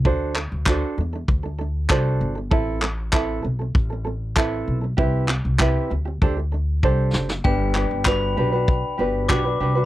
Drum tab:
CP |--x-x-------x---|--x-x-------x---|--x-x-----------|--x-x-------x---|
SD |----------------|----------------|--------------oo|----------------|
BD |o---o---o---o---|o---o---o---o---|o---o---o---o---|o---o---o---o---|